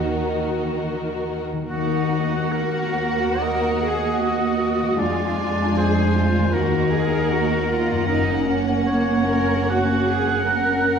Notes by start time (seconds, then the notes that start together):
Already playing: D#2 D#3 F#3 D#4 F#4 A#4 D#5
1.52 D#3
1.57 F#3
1.61 F#4
1.66 A#3 A#4
1.70 D#2 D#4 F#4 F#5
2.52 F#4 A#4
3.40 A#4 D#5
3.83 G#4
4.22 F#4
4.82 F3
4.87 G#3
4.91 D4
4.96 G#3 D4 F4 G#4 D5 G#5
5.00 F2
5.77 G#4 C5
6.16 F4
6.37 D#3
6.41 A#3
6.46 D#4
6.50 F#4 A#4
6.55 D#2 A#3 D#4 F#5
6.93 G#4
7.31 F#4
7.70 F4
7.91 F#2
7.95 A#3
8.00 C#4
8.04 C#4 F#4 A#4
8.09 F#1 D#4
8.47 C#4
8.87 A#3 C#5
9.28 A#4
9.69 F#4 F#5
10.08 G#4
10.46 A#4